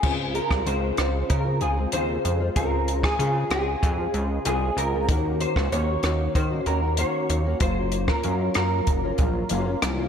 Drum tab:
CC |x---------------|----------------|----------------|----------------|
HH |--x-x-x-x-x-x-x-|x-x-x-x-x-x-x-x-|x-x-x-x-x-x-x-x-|x-x-x-x-x-x-x-x-|
SD |---r--r---------|---r--r---------|---r--r---------|---r--r-------r-|
BD |o--o----o-------|o--o----o-------|o--o----o-------|o--o----o-o-----|